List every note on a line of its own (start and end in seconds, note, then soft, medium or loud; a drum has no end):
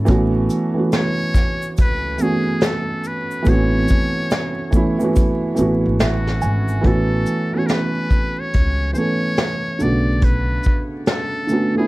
0.00 0.11 D3 medium
0.00 0.06 A3 medium
0.00 0.08 B3 medium
0.00 0.09 C#4 medium
0.00 0.11 F#4 medium
0.05 0.46 A1 loud
0.05 0.64 E3 loud
0.05 0.64 A3 loud
0.05 0.65 B3 loud
0.05 kick loud
0.05 closed hi-hat medium
0.05 shaker medium
0.09 0.66 C#4 loud
0.09 0.67 F#4 loud
0.50 closed hi-hat soft
0.50 shaker medium
0.74 2.01 E3 medium
0.74 2.02 A3 medium
0.74 2.02 B3 medium
0.74 2.03 C#4 medium
0.79 2.04 F#4 medium
0.92 1.75 C#5 loud
0.92 snare loud
0.92 closed hi-hat medium
0.92 shaker medium
1.34 kick medium
1.34 snare soft
1.34 shaker soft
1.34 shaker medium
1.62 shaker medium
1.77 2.16 C#2 medium
1.77 2.23 B4 loud
1.77 kick loud
1.77 closed hi-hat medium
1.77 shaker medium
2.18 3.32 E3 medium
2.18 3.32 A3 medium
2.18 3.33 B3 medium
2.18 shaker soft
2.21 3.34 C#4 medium
2.21 3.34 F#4 medium
2.21 2.66 G#4 medium
2.21 shaker medium
2.61 snare loud
2.61 closed hi-hat medium
2.61 shaker medium
2.65 3.09 A4 medium
3.04 3.51 B4 medium
3.04 shaker soft
3.31 shaker medium
3.42 4.57 E3 loud
3.42 4.58 A3 medium
3.42 4.59 B3 loud
3.42 3.55 C4 medium
3.42 closed hi-hat medium
3.42 shaker medium
3.47 3.84 A1 loud
3.47 4.60 F#4 loud
3.47 5.17 C#5 loud
3.47 kick loud
3.53 4.63 C#4 medium
3.88 kick medium
3.88 shaker medium
4.31 snare loud
4.31 closed hi-hat medium
4.31 shaker medium
4.71 4.95 E3 medium
4.71 4.96 A3 medium
4.71 4.96 B3 medium
4.71 kick medium
4.71 shaker medium
4.75 4.97 C#4 medium
4.75 4.98 E4 loud
4.98 5.50 E3 medium
4.98 5.51 A3 medium
4.98 5.52 B3 medium
4.98 shaker medium
5.02 5.52 C#4 medium
5.02 5.53 F#4 loud
5.16 kick medium
5.16 closed hi-hat medium
5.16 shaker medium
5.55 5.82 A1 medium
5.55 6.69 E3 medium
5.55 6.70 A3 medium
5.55 6.70 B3 medium
5.55 shaker medium
5.55 shaker soft
5.59 6.71 C#4 medium
5.59 6.72 F#4 loud
5.86 5.99 G#1 medium
5.99 6.38 A1 medium
5.99 6.88 F#4 medium
5.99 6.40 E5 medium
5.99 snare loud
5.99 closed hi-hat medium
5.99 shaker medium
6.27 snare soft
6.42 6.80 G#1 loud
6.42 6.81 G#5 medium
6.42 shaker soft
6.68 shaker soft
6.81 7.22 A1 loud
6.81 7.40 E3 loud
6.81 7.41 A3 loud
6.81 7.41 B3 medium
6.81 kick medium
6.81 closed hi-hat medium
6.86 7.42 C#4 loud
6.86 7.43 F#4 loud
6.86 7.57 A4 medium
7.26 shaker soft
7.52 8.78 E3 medium
7.52 8.79 A3 medium
7.52 8.80 B3 medium
7.52 7.68 C#5 medium
7.56 8.80 C#4 medium
7.56 8.81 F#4 medium
7.66 7.73 A#4 medium
7.66 snare loud
7.66 closed hi-hat medium
7.71 8.41 B4 loud
8.11 kick medium
8.11 shaker soft
8.40 8.92 C#5 loud
8.54 8.92 C#2 medium
8.54 kick medium
8.54 closed hi-hat medium
8.93 9.79 E3 medium
8.93 9.78 A3 medium
8.93 9.80 B3 medium
8.93 8.99 C5 medium
8.93 shaker soft
8.98 9.81 C#4 medium
8.98 9.82 A4 medium
8.98 9.84 C#5 loud
9.37 snare loud
9.37 closed hi-hat soft
9.79 10.56 B1 medium
9.79 11.28 D3 medium
9.79 11.28 A3 medium
9.79 11.29 B3 medium
9.79 10.26 D5 medium
9.79 shaker soft
9.83 11.30 C#3 medium
9.83 11.30 F#4 medium
10.22 10.85 B4 medium
10.22 kick medium
10.22 closed hi-hat medium
10.63 kick medium
10.63 shaker soft
11.06 11.73 A4 loud
11.06 snare loud
11.06 closed hi-hat medium
11.47 11.71 D3 medium
11.47 11.72 A3 medium
11.47 11.73 B3 medium
11.47 shaker soft
11.51 11.73 C#4 medium
11.51 11.74 F#4 medium
11.74 11.87 D3 medium
11.74 11.87 A3 medium
11.74 11.87 B3 medium
11.74 11.87 G#4 medium
11.78 11.87 C#4 medium
11.78 11.87 E4 medium